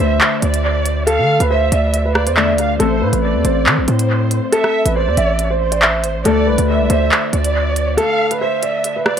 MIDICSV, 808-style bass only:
0, 0, Header, 1, 2, 480
1, 0, Start_track
1, 0, Tempo, 431655
1, 1192, Time_signature, 4, 2, 24, 8
1, 10229, End_track
2, 0, Start_track
2, 0, Title_t, "808-style bass"
2, 0, Program_c, 0, 38
2, 0, Note_on_c, 0, 38, 107
2, 223, Note_off_c, 0, 38, 0
2, 472, Note_on_c, 0, 38, 110
2, 1319, Note_on_c, 0, 50, 101
2, 1336, Note_off_c, 0, 38, 0
2, 1547, Note_off_c, 0, 50, 0
2, 1559, Note_on_c, 0, 38, 100
2, 1898, Note_off_c, 0, 38, 0
2, 1912, Note_on_c, 0, 38, 109
2, 2519, Note_on_c, 0, 40, 98
2, 2535, Note_off_c, 0, 38, 0
2, 2815, Note_on_c, 0, 38, 96
2, 2832, Note_off_c, 0, 40, 0
2, 3097, Note_off_c, 0, 38, 0
2, 3112, Note_on_c, 0, 33, 114
2, 3353, Note_on_c, 0, 45, 100
2, 3369, Note_off_c, 0, 33, 0
2, 3473, Note_off_c, 0, 45, 0
2, 3480, Note_on_c, 0, 33, 111
2, 3720, Note_on_c, 0, 40, 100
2, 3737, Note_off_c, 0, 33, 0
2, 3827, Note_off_c, 0, 40, 0
2, 3833, Note_on_c, 0, 33, 111
2, 4073, Note_on_c, 0, 52, 101
2, 4089, Note_off_c, 0, 33, 0
2, 4201, Note_on_c, 0, 33, 103
2, 4217, Note_off_c, 0, 52, 0
2, 4307, Note_off_c, 0, 33, 0
2, 4313, Note_on_c, 0, 45, 107
2, 4896, Note_off_c, 0, 45, 0
2, 5400, Note_on_c, 0, 33, 107
2, 5640, Note_on_c, 0, 40, 104
2, 5657, Note_off_c, 0, 33, 0
2, 5747, Note_off_c, 0, 40, 0
2, 5753, Note_on_c, 0, 33, 109
2, 6712, Note_on_c, 0, 32, 100
2, 6729, Note_off_c, 0, 33, 0
2, 6840, Note_on_c, 0, 33, 105
2, 6857, Note_off_c, 0, 32, 0
2, 6947, Note_off_c, 0, 33, 0
2, 6953, Note_on_c, 0, 38, 106
2, 7193, Note_on_c, 0, 36, 103
2, 7210, Note_off_c, 0, 38, 0
2, 7313, Note_off_c, 0, 36, 0
2, 7320, Note_on_c, 0, 38, 105
2, 7559, Note_on_c, 0, 36, 101
2, 7576, Note_off_c, 0, 38, 0
2, 7667, Note_off_c, 0, 36, 0
2, 7672, Note_on_c, 0, 38, 107
2, 7902, Note_off_c, 0, 38, 0
2, 8152, Note_on_c, 0, 38, 107
2, 8872, Note_off_c, 0, 38, 0
2, 10229, End_track
0, 0, End_of_file